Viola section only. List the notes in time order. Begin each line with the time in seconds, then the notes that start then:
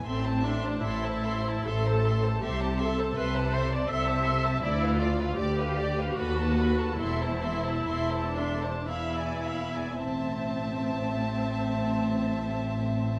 0.05 C4
0.44 D4
0.83 E4
1.66 A4
2.42 G4
2.81 A4
3.18 B4
3.54 C5
3.72 D5
3.89 E5
4.62 E4
5.00 F4
5.37 G4
6.16 F#4
6.98 E4
8.36 D4
8.89 E4
10.00 C4